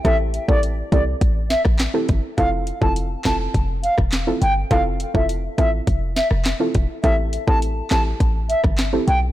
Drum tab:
HH |x-x-x-x-x-x-x-x-|x-x-x-x-x-x-x-x-|x-x-x-x-x-x-x-x-|x-x-x-x-x-x-x-x-|
CP |------------x---|------x-----x---|------------x---|------x-----x---|
SD |----------oro---|------o----ro---|----------oro---|------o----ro---|
BD |o--o--o-o--o--o-|o--o--o-o--o----|o--o--o-o-----o-|o--o--o-o--o----|